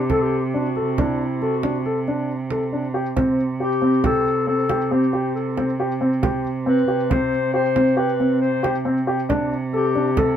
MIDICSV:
0, 0, Header, 1, 5, 480
1, 0, Start_track
1, 0, Tempo, 437956
1, 103, Time_signature, 7, 2, 24, 8
1, 11362, End_track
2, 0, Start_track
2, 0, Title_t, "Clarinet"
2, 0, Program_c, 0, 71
2, 0, Note_on_c, 0, 67, 66
2, 118, Note_off_c, 0, 67, 0
2, 139, Note_on_c, 0, 69, 68
2, 243, Note_on_c, 0, 67, 67
2, 259, Note_off_c, 0, 69, 0
2, 501, Note_off_c, 0, 67, 0
2, 508, Note_on_c, 0, 67, 47
2, 619, Note_on_c, 0, 66, 69
2, 635, Note_off_c, 0, 67, 0
2, 1082, Note_off_c, 0, 66, 0
2, 1094, Note_on_c, 0, 64, 60
2, 1575, Note_on_c, 0, 66, 61
2, 1591, Note_off_c, 0, 64, 0
2, 2040, Note_off_c, 0, 66, 0
2, 3969, Note_on_c, 0, 67, 78
2, 4403, Note_off_c, 0, 67, 0
2, 4443, Note_on_c, 0, 69, 84
2, 4880, Note_off_c, 0, 69, 0
2, 4912, Note_on_c, 0, 69, 81
2, 5390, Note_on_c, 0, 67, 69
2, 5407, Note_off_c, 0, 69, 0
2, 5858, Note_off_c, 0, 67, 0
2, 5865, Note_on_c, 0, 69, 59
2, 6311, Note_off_c, 0, 69, 0
2, 7307, Note_on_c, 0, 71, 84
2, 7788, Note_on_c, 0, 72, 84
2, 7804, Note_off_c, 0, 71, 0
2, 8258, Note_off_c, 0, 72, 0
2, 8264, Note_on_c, 0, 72, 84
2, 8739, Note_on_c, 0, 71, 72
2, 8755, Note_off_c, 0, 72, 0
2, 9213, Note_off_c, 0, 71, 0
2, 9219, Note_on_c, 0, 72, 70
2, 9669, Note_off_c, 0, 72, 0
2, 10682, Note_on_c, 0, 67, 76
2, 11165, Note_on_c, 0, 69, 69
2, 11181, Note_off_c, 0, 67, 0
2, 11362, Note_off_c, 0, 69, 0
2, 11362, End_track
3, 0, Start_track
3, 0, Title_t, "Grand piano"
3, 0, Program_c, 1, 0
3, 109, Note_on_c, 1, 69, 62
3, 363, Note_off_c, 1, 69, 0
3, 593, Note_on_c, 1, 62, 54
3, 718, Note_off_c, 1, 62, 0
3, 834, Note_on_c, 1, 69, 55
3, 959, Note_off_c, 1, 69, 0
3, 1078, Note_on_c, 1, 62, 57
3, 1329, Note_off_c, 1, 62, 0
3, 1553, Note_on_c, 1, 69, 58
3, 1678, Note_off_c, 1, 69, 0
3, 1789, Note_on_c, 1, 62, 53
3, 1916, Note_off_c, 1, 62, 0
3, 2035, Note_on_c, 1, 69, 57
3, 2160, Note_off_c, 1, 69, 0
3, 2276, Note_on_c, 1, 62, 55
3, 2528, Note_off_c, 1, 62, 0
3, 2748, Note_on_c, 1, 69, 52
3, 2875, Note_off_c, 1, 69, 0
3, 2988, Note_on_c, 1, 62, 52
3, 3115, Note_off_c, 1, 62, 0
3, 3223, Note_on_c, 1, 67, 56
3, 3351, Note_off_c, 1, 67, 0
3, 3467, Note_on_c, 1, 60, 61
3, 3722, Note_off_c, 1, 60, 0
3, 3948, Note_on_c, 1, 67, 51
3, 4074, Note_off_c, 1, 67, 0
3, 4183, Note_on_c, 1, 60, 57
3, 4311, Note_off_c, 1, 60, 0
3, 4426, Note_on_c, 1, 67, 56
3, 4680, Note_off_c, 1, 67, 0
3, 4901, Note_on_c, 1, 60, 56
3, 5029, Note_off_c, 1, 60, 0
3, 5146, Note_on_c, 1, 67, 54
3, 5273, Note_off_c, 1, 67, 0
3, 5385, Note_on_c, 1, 60, 61
3, 5512, Note_off_c, 1, 60, 0
3, 5622, Note_on_c, 1, 67, 53
3, 5878, Note_off_c, 1, 67, 0
3, 6109, Note_on_c, 1, 60, 59
3, 6235, Note_off_c, 1, 60, 0
3, 6353, Note_on_c, 1, 67, 58
3, 6478, Note_off_c, 1, 67, 0
3, 6585, Note_on_c, 1, 60, 59
3, 6712, Note_off_c, 1, 60, 0
3, 6824, Note_on_c, 1, 67, 59
3, 7079, Note_off_c, 1, 67, 0
3, 7302, Note_on_c, 1, 60, 60
3, 7430, Note_off_c, 1, 60, 0
3, 7539, Note_on_c, 1, 67, 53
3, 7668, Note_off_c, 1, 67, 0
3, 7784, Note_on_c, 1, 60, 57
3, 8039, Note_off_c, 1, 60, 0
3, 8261, Note_on_c, 1, 67, 59
3, 8389, Note_off_c, 1, 67, 0
3, 8501, Note_on_c, 1, 60, 52
3, 8629, Note_off_c, 1, 60, 0
3, 8732, Note_on_c, 1, 67, 64
3, 8863, Note_off_c, 1, 67, 0
3, 8985, Note_on_c, 1, 60, 52
3, 9240, Note_off_c, 1, 60, 0
3, 9458, Note_on_c, 1, 67, 62
3, 9588, Note_off_c, 1, 67, 0
3, 9701, Note_on_c, 1, 60, 60
3, 9830, Note_off_c, 1, 60, 0
3, 9943, Note_on_c, 1, 67, 62
3, 10071, Note_off_c, 1, 67, 0
3, 10184, Note_on_c, 1, 62, 68
3, 10440, Note_off_c, 1, 62, 0
3, 10665, Note_on_c, 1, 69, 58
3, 10793, Note_off_c, 1, 69, 0
3, 10907, Note_on_c, 1, 62, 58
3, 11035, Note_off_c, 1, 62, 0
3, 11146, Note_on_c, 1, 69, 59
3, 11362, Note_off_c, 1, 69, 0
3, 11362, End_track
4, 0, Start_track
4, 0, Title_t, "Cello"
4, 0, Program_c, 2, 42
4, 0, Note_on_c, 2, 48, 67
4, 3473, Note_off_c, 2, 48, 0
4, 3473, Note_on_c, 2, 48, 56
4, 10186, Note_off_c, 2, 48, 0
4, 10186, Note_on_c, 2, 48, 69
4, 11362, Note_off_c, 2, 48, 0
4, 11362, End_track
5, 0, Start_track
5, 0, Title_t, "Frame drum"
5, 106, Note_on_c, 9, 64, 38
5, 216, Note_off_c, 9, 64, 0
5, 829, Note_on_c, 9, 64, 14
5, 939, Note_off_c, 9, 64, 0
5, 1075, Note_on_c, 9, 64, 41
5, 1185, Note_off_c, 9, 64, 0
5, 1554, Note_on_c, 9, 64, 13
5, 1664, Note_off_c, 9, 64, 0
5, 1791, Note_on_c, 9, 64, 38
5, 1900, Note_off_c, 9, 64, 0
5, 2273, Note_on_c, 9, 64, 13
5, 2383, Note_off_c, 9, 64, 0
5, 2746, Note_on_c, 9, 64, 35
5, 2855, Note_off_c, 9, 64, 0
5, 3470, Note_on_c, 9, 64, 42
5, 3580, Note_off_c, 9, 64, 0
5, 3712, Note_on_c, 9, 64, 14
5, 3822, Note_off_c, 9, 64, 0
5, 3955, Note_on_c, 9, 64, 12
5, 4064, Note_off_c, 9, 64, 0
5, 4187, Note_on_c, 9, 64, 14
5, 4297, Note_off_c, 9, 64, 0
5, 4427, Note_on_c, 9, 64, 46
5, 4536, Note_off_c, 9, 64, 0
5, 4668, Note_on_c, 9, 64, 12
5, 4778, Note_off_c, 9, 64, 0
5, 5146, Note_on_c, 9, 64, 39
5, 5255, Note_off_c, 9, 64, 0
5, 5629, Note_on_c, 9, 64, 14
5, 5739, Note_off_c, 9, 64, 0
5, 6111, Note_on_c, 9, 64, 33
5, 6220, Note_off_c, 9, 64, 0
5, 6828, Note_on_c, 9, 64, 44
5, 6938, Note_off_c, 9, 64, 0
5, 7065, Note_on_c, 9, 64, 15
5, 7175, Note_off_c, 9, 64, 0
5, 7307, Note_on_c, 9, 64, 13
5, 7416, Note_off_c, 9, 64, 0
5, 7547, Note_on_c, 9, 64, 15
5, 7656, Note_off_c, 9, 64, 0
5, 7791, Note_on_c, 9, 64, 46
5, 7901, Note_off_c, 9, 64, 0
5, 8031, Note_on_c, 9, 64, 13
5, 8141, Note_off_c, 9, 64, 0
5, 8505, Note_on_c, 9, 64, 38
5, 8615, Note_off_c, 9, 64, 0
5, 8992, Note_on_c, 9, 64, 14
5, 9101, Note_off_c, 9, 64, 0
5, 9474, Note_on_c, 9, 64, 35
5, 9583, Note_off_c, 9, 64, 0
5, 10190, Note_on_c, 9, 64, 41
5, 10300, Note_off_c, 9, 64, 0
5, 10430, Note_on_c, 9, 64, 15
5, 10540, Note_off_c, 9, 64, 0
5, 10675, Note_on_c, 9, 64, 13
5, 10784, Note_off_c, 9, 64, 0
5, 10909, Note_on_c, 9, 64, 14
5, 11018, Note_off_c, 9, 64, 0
5, 11147, Note_on_c, 9, 64, 47
5, 11256, Note_off_c, 9, 64, 0
5, 11362, End_track
0, 0, End_of_file